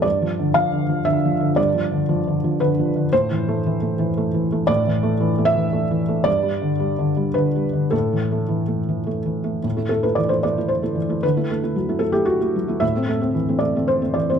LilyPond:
<<
  \new Staff \with { instrumentName = "Felt piano" } { \time 3/4 \key a \minor \tempo 4 = 114 d''4 f''4 e''4 | d''2 b'4 | c''2. | d''4. e''4. |
d''2 b'4 | a'2 r4 | \key a \dorian r8 a'16 b'16 d''16 c''16 d''8 c''4 | b'4. a'16 g'16 fis'4 |
e''4. d''8 c''8 d''16 c''16 | }
  \new Staff \with { instrumentName = "Felt piano" } { \time 3/4 \key a \minor \tuplet 3/2 { g,8 f8 d8 f8 d8 f8 d8 f8 d8 } | \tuplet 3/2 { g,8 f8 d8 f8 d8 f8 d8 f8 d8 } | \tuplet 3/2 { a,8 e8 a8 e8 a8 e8 a8 e8 a8 } | \tuplet 3/2 { a,8 e8 a8 e8 a8 e8 a8 e8 a8 } |
\tuplet 3/2 { g,8 g8 d8 g8 d8 g8 d8 g8 d8 } | \tuplet 3/2 { a,8 e8 a8 e8 a8 e8 a8 e8 a8 } | \key a \dorian a,16 <a e'>16 a16 <a e'>16 e16 <a e'>16 a16 <a e'>8 <a e'>16 e16 <a e'>16 | d16 <a e'>16 a16 <a e'>16 fis16 <a e'>16 a16 <a e'>8 <a e'>16 fis16 <a e'>16 |
a,16 <a c'>16 a16 <a c'>16 e16 <a c'>16 a16 <a c'>8 <a c'>16 e16 <a c'>16 | }
>>